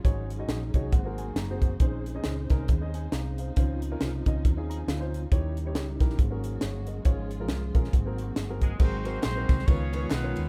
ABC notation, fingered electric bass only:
X:1
M:4/4
L:1/8
Q:"Swing" 1/4=137
K:Db
V:1 name="Fingered electric bass" clef=bass
A,,,2 B,,, C,, A,,,2 G,,,2 | B,,,2 D,, C,, E,,2 C,,2 | D,,2 C,, D,, E,,2 =D,,2 | E,,2 D,, B,,, A,,,2 =G,,,2 |
A,,,2 C,, B,,, A,,,2 =G,,,2 | A,,,2 B,,, C,, D,,2 _C,, E,, |]